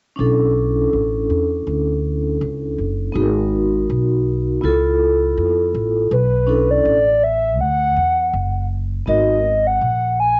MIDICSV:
0, 0, Header, 1, 4, 480
1, 0, Start_track
1, 0, Tempo, 740741
1, 119, Time_signature, 4, 2, 24, 8
1, 6739, End_track
2, 0, Start_track
2, 0, Title_t, "Soft synth lead"
2, 0, Program_c, 0, 80
2, 3969, Note_on_c, 0, 71, 84
2, 4346, Note_on_c, 0, 74, 94
2, 4356, Note_off_c, 0, 71, 0
2, 4689, Note_on_c, 0, 76, 101
2, 4699, Note_off_c, 0, 74, 0
2, 4924, Note_off_c, 0, 76, 0
2, 4930, Note_on_c, 0, 78, 111
2, 5619, Note_off_c, 0, 78, 0
2, 5886, Note_on_c, 0, 75, 88
2, 6266, Note_on_c, 0, 78, 92
2, 6276, Note_off_c, 0, 75, 0
2, 6604, Note_off_c, 0, 78, 0
2, 6609, Note_on_c, 0, 80, 96
2, 6739, Note_off_c, 0, 80, 0
2, 6739, End_track
3, 0, Start_track
3, 0, Title_t, "Vibraphone"
3, 0, Program_c, 1, 11
3, 103, Note_on_c, 1, 61, 59
3, 112, Note_on_c, 1, 62, 58
3, 122, Note_on_c, 1, 64, 52
3, 131, Note_on_c, 1, 69, 69
3, 2006, Note_off_c, 1, 61, 0
3, 2010, Note_off_c, 1, 62, 0
3, 2015, Note_off_c, 1, 64, 0
3, 2019, Note_off_c, 1, 69, 0
3, 2024, Note_on_c, 1, 59, 65
3, 2034, Note_on_c, 1, 63, 58
3, 2041, Note_on_c, 1, 66, 64
3, 2052, Note_on_c, 1, 68, 56
3, 2092, Note_on_c, 1, 70, 73
3, 2094, Note_off_c, 1, 68, 0
3, 2972, Note_off_c, 1, 59, 0
3, 2977, Note_off_c, 1, 63, 0
3, 2981, Note_off_c, 1, 66, 0
3, 2986, Note_on_c, 1, 59, 64
3, 2993, Note_on_c, 1, 64, 62
3, 3004, Note_on_c, 1, 65, 60
3, 3007, Note_off_c, 1, 70, 0
3, 3012, Note_on_c, 1, 69, 77
3, 3934, Note_off_c, 1, 59, 0
3, 3937, Note_off_c, 1, 64, 0
3, 3942, Note_off_c, 1, 65, 0
3, 3947, Note_off_c, 1, 69, 0
3, 4191, Note_on_c, 1, 61, 60
3, 4196, Note_on_c, 1, 62, 59
3, 4201, Note_on_c, 1, 64, 57
3, 4206, Note_on_c, 1, 69, 71
3, 4490, Note_off_c, 1, 61, 0
3, 4493, Note_off_c, 1, 62, 0
3, 4495, Note_off_c, 1, 64, 0
3, 4498, Note_off_c, 1, 69, 0
3, 5872, Note_on_c, 1, 59, 55
3, 5877, Note_on_c, 1, 63, 56
3, 5880, Note_on_c, 1, 66, 55
3, 5886, Note_on_c, 1, 70, 63
3, 6054, Note_off_c, 1, 59, 0
3, 6056, Note_off_c, 1, 63, 0
3, 6058, Note_off_c, 1, 66, 0
3, 6061, Note_off_c, 1, 70, 0
3, 6739, End_track
4, 0, Start_track
4, 0, Title_t, "Upright bass"
4, 0, Program_c, 2, 32
4, 122, Note_on_c, 2, 35, 90
4, 577, Note_off_c, 2, 35, 0
4, 602, Note_on_c, 2, 33, 78
4, 829, Note_off_c, 2, 33, 0
4, 841, Note_on_c, 2, 40, 81
4, 1068, Note_off_c, 2, 40, 0
4, 1080, Note_on_c, 2, 38, 84
4, 1536, Note_off_c, 2, 38, 0
4, 1562, Note_on_c, 2, 37, 89
4, 1789, Note_off_c, 2, 37, 0
4, 1803, Note_on_c, 2, 30, 72
4, 2030, Note_off_c, 2, 30, 0
4, 2043, Note_on_c, 2, 32, 104
4, 2498, Note_off_c, 2, 32, 0
4, 2524, Note_on_c, 2, 35, 87
4, 2978, Note_off_c, 2, 35, 0
4, 3003, Note_on_c, 2, 37, 96
4, 3457, Note_off_c, 2, 37, 0
4, 3482, Note_on_c, 2, 41, 92
4, 3709, Note_off_c, 2, 41, 0
4, 3722, Note_on_c, 2, 33, 91
4, 3949, Note_off_c, 2, 33, 0
4, 3960, Note_on_c, 2, 35, 99
4, 4416, Note_off_c, 2, 35, 0
4, 4440, Note_on_c, 2, 33, 93
4, 4920, Note_off_c, 2, 33, 0
4, 4920, Note_on_c, 2, 38, 92
4, 5148, Note_off_c, 2, 38, 0
4, 5160, Note_on_c, 2, 40, 82
4, 5388, Note_off_c, 2, 40, 0
4, 5400, Note_on_c, 2, 30, 93
4, 5856, Note_off_c, 2, 30, 0
4, 5880, Note_on_c, 2, 32, 94
4, 6336, Note_off_c, 2, 32, 0
4, 6359, Note_on_c, 2, 34, 90
4, 6739, Note_off_c, 2, 34, 0
4, 6739, End_track
0, 0, End_of_file